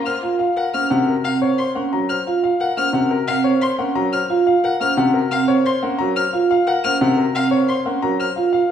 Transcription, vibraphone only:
0.23 F4
0.74 C#4
0.91 F#4
1.25 C4
1.42 C5
1.76 C#4
2.27 F4
2.77 C#4
2.95 F#4
3.28 C4
3.45 C5
3.79 C#4
4.30 F4
4.81 C#4
4.98 F#4
5.31 C4
5.49 C5
5.83 C#4
6.00 A#4
6.34 F4
6.85 C#4
7.02 F#4
7.36 C4
7.53 C5
7.86 C#4
8.03 A#4
8.37 F4

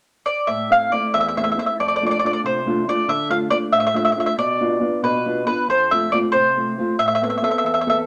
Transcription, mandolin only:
0.26 D5
0.47 E5
0.72 F5
0.92 D5
1.14 E5
1.21 E5
1.28 E5
1.37 E5
1.44 E5
1.52 E5
1.59 E5
1.66 E5
1.80 D5
1.88 D5
1.96 D5
2.06 D5
2.11 D5
2.19 D5
2.26 D5
2.33 D5
2.46 C5
2.89 D5
3.09 E5
3.31 F5
3.50 D5
3.73 E5
3.80 E5
3.87 E5
3.96 E5
4.05 E5
4.12 E5
4.20 E5
4.26 E5
4.39 D5
5.04 B4
5.47 B4
5.70 C5
5.91 E5
6.12 D5
6.32 C5
6.99 E5
7.08 E5
7.15 E5
7.24 E5
7.30 E5
7.38 E5
7.44 E5
7.51 E5
7.58 E5
7.66 E5
7.74 E5
7.81 E5
7.90 E5

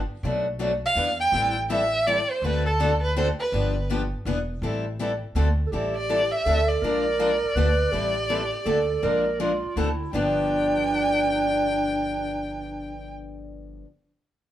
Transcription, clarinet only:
5.67 A4
5.71 G4
6.46 A4
6.83 A#4
7.56 B4
7.92 G4
8.66 A4
9.03 A#4
9.40 F4
9.76 E4
10.13 D4

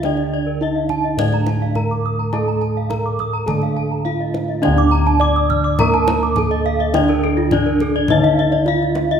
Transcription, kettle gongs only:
Already playing: D3
0.04 D4
0.61 D#4
1.17 A2
1.75 D#4
2.34 A4
2.90 D#4
3.48 D3
4.05 D#4
4.63 D4
4.67 D2
5.20 D#4
6.36 D#4
6.94 D4
7.53 D#4
8.10 D3
8.68 D#4

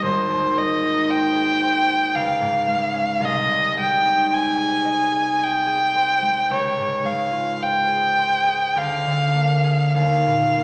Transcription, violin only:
0.05 C5
0.58 D#5
1.10 G5
2.15 F5
3.25 D#5
3.79 G5
4.34 G#5
5.43 G5
6.53 C#5
7.06 F5
7.62 G5
8.78 F5
9.97 F5

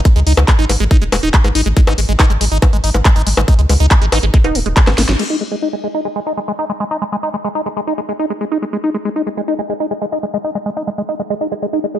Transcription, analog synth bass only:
0.16 C#2
0.27 C#2
0.37 C#2
0.59 G#1
0.69 G#1
0.80 G#1
1.02 D#1
1.12 D#1
1.23 D#1
1.44 G#1
1.55 G#1
1.66 G#1
1.87 G#1
1.98 G#1
2.09 G#1
2.30 G#1
2.41 G#1
2.52 G#1
2.73 G#1
2.84 G#1
2.94 G#1
3.16 G#1
3.27 G#1
3.37 G#1
3.59 C#2
3.69 C#2
3.80 C#2
4.02 G#1
4.12 G#1
4.23 G#1
4.44 D#1
4.55 D#1
4.66 D#1
4.87 G#1
4.98 G#1
5.09 G#1

